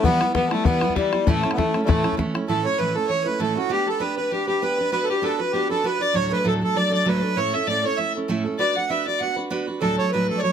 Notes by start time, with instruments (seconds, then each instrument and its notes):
0.03 steel-string acoustic guitar E3 G3 B3 E4, accordion B3, fiddle B3, bodhran
0.21 steel-string acoustic guitar G3 B3 E4, bodhran
0.34 steel-string acoustic guitar E3 G3 B3 E4, accordion B3, fiddle B3, bodhran
0.49 fiddle A3, accordion A3, steel-string acoustic guitar B3 E4, bodhran
0.54 steel-string acoustic guitar G3
0.64 steel-string acoustic guitar E3 G3 B3 E4, fiddle B3, accordion B3, bodhran
0.81 steel-string acoustic guitar G3 B3 E4, bodhran
0.89 bodhran
0.95 steel-string acoustic guitar E3 G3 B3 E4, fiddle G3, accordion G3, bodhran
1.12 steel-string acoustic guitar G3 B3 E4, bodhran
1.26 steel-string acoustic guitar A2 E3 A3 C#4 E4, accordion A3, fiddle A3, bodhran
1.43 steel-string acoustic guitar A3 C#4 E4, bodhran
1.51 accordion B3, bodhran
1.55 steel-string acoustic guitar E3 A3 C#4, accordion A3, fiddle A3, bodhran
1.59 steel-string acoustic guitar E4
1.74 steel-string acoustic guitar A3 C#4 E4, bodhran
1.84 steel-string acoustic guitar A2 E3 A3, accordion G3 A3, fiddle A3
1.88 steel-string acoustic guitar C#4 E4, bodhran
2.03 steel-string acoustic guitar A3 C#4 E4, bodhran
2.12 bodhran
2.17 steel-string acoustic guitar E3 A3 C#4 E4, bodhran
2.34 steel-string acoustic guitar A3 C#4 E4, bodhran
2.48 steel-string acoustic guitar A2 E3 A3 C#4 E4, fiddle A4, accordion A4
2.64 steel-string acoustic guitar A3 C#4 E4, fiddle C#5, accordion C#5
2.78 steel-string acoustic guitar A2 E3 A3 C#4 E4, accordion B4, fiddle B4
2.94 steel-string acoustic guitar A3 C#4 E4, fiddle A4, accordion A4
3.07 steel-string acoustic guitar E3 A3 C#4 E4, fiddle C#5, accordion C#5
3.24 steel-string acoustic guitar C#4 E4, fiddle B4, accordion B4
3.28 steel-string acoustic guitar A3
3.39 steel-string acoustic guitar A2 E3 A3 C#4 E4, fiddle A4, accordion A4
3.55 steel-string acoustic guitar A3 C#4 E4, fiddle F#4, accordion F#4
3.69 steel-string acoustic guitar B3 D4 G4 B4, fiddle G4, accordion G4
3.86 steel-string acoustic guitar D4 G4 B4, fiddle A4, accordion A4
4.00 steel-string acoustic guitar B3 D4 G4 B4, accordion B4, fiddle B4
4.17 steel-string acoustic guitar D4 G4 B4, accordion B4, fiddle B4
4.31 steel-string acoustic guitar B3 D4 G4 B4, fiddle G4, accordion G4
4.47 steel-string acoustic guitar D4 G4 B4, fiddle G4, accordion G4
4.62 steel-string acoustic guitar B3 D4 G4 B4, fiddle B4, accordion B4
4.78 steel-string acoustic guitar D4 G4 B4
4.92 steel-string acoustic guitar B3 D4 F#4 B4, accordion B4, fiddle B4
5.04 accordion A4
5.08 steel-string acoustic guitar D4 F#4 B4, accordion G4, fiddle G4
5.22 steel-string acoustic guitar B3 D4 F#4 B4, accordion A4
5.26 fiddle A4
5.38 steel-string acoustic guitar D4 F#4 B4, accordion B4, fiddle B4
5.52 steel-string acoustic guitar B3 D4 F#4 B4, accordion G4, fiddle G4
5.69 steel-string acoustic guitar D4 F#4 B4, accordion A4, fiddle A4
5.84 steel-string acoustic guitar B3 D4 F#4 B4, accordion B4, fiddle B4
5.99 steel-string acoustic guitar D4 F#4 B4, accordion D5, fiddle D5
6.13 steel-string acoustic guitar D2 A2 F#3 A3 D4 A4, fiddle C#5, accordion C#5
6.29 steel-string acoustic guitar F#3 A3 D4 A4, accordion B4, fiddle B4
6.43 steel-string acoustic guitar D2 A2 F#3 A3 D4 A4, accordion A4
6.48 fiddle A4
6.60 steel-string acoustic guitar F#3 A3 D4 A4, accordion A4
6.64 fiddle A4
6.75 steel-string acoustic guitar F#3 A3 D4 A4, accordion D5, fiddle D5
6.90 steel-string acoustic guitar F#3 A3 D4 A4, fiddle D5
6.94 accordion D5
7.05 steel-string acoustic guitar D2 A2 F#3 A3 D4 A4, accordion B4
7.09 fiddle B4
7.22 steel-string acoustic guitar F#3 A3 D4 A4
7.36 steel-string acoustic guitar A2 A3 C#4 E4 A4, accordion C#5, fiddle C#5
7.53 steel-string acoustic guitar C#4 E4 A4, accordion E5, fiddle E5
7.67 steel-string acoustic guitar A2 A3 C#4 E4 A4, fiddle D5, accordion D5
7.83 steel-string acoustic guitar C#4 E4 A4, accordion C#5, fiddle C#5
7.97 steel-string acoustic guitar A3 C#4 E4 A4, accordion E5, fiddle E5
8.15 steel-string acoustic guitar C#4 E4 A4
8.28 steel-string acoustic guitar A2 A3 C#4 E4 A4
8.44 steel-string acoustic guitar C#4 E4 A4
8.58 steel-string acoustic guitar B3 D4 F#4 B4, fiddle D5, accordion D5
8.75 steel-string acoustic guitar D4 F#4 B4, fiddle F#5, accordion F#5
8.89 steel-string acoustic guitar B3 D4 F#4 B4, fiddle E5, accordion E5
9.05 steel-string acoustic guitar D4 F#4 B4, fiddle D5, accordion D5
9.19 steel-string acoustic guitar B3 D4 F#4, fiddle F#5, accordion F#5
9.23 steel-string acoustic guitar B4
9.36 steel-string acoustic guitar D4 F#4 B4
9.50 steel-string acoustic guitar B3 D4 F#4 B4
9.67 steel-string acoustic guitar D4 F#4 B4
9.81 steel-string acoustic guitar D2 A2 F#3 A3 D4 A4, accordion A4, fiddle A4
9.97 steel-string acoustic guitar F#3 A3 D4 A4, accordion C#5
10.09 steel-string acoustic guitar D2 A2 F#3, fiddle B4, accordion B4
10.14 steel-string acoustic guitar A3 D4 A4
10.28 steel-string acoustic guitar F#3 A3 D4 A4, accordion A4
10.37 fiddle C#5, accordion D5
10.43 steel-string acoustic guitar F#3 A3 D4 A4, accordion C#5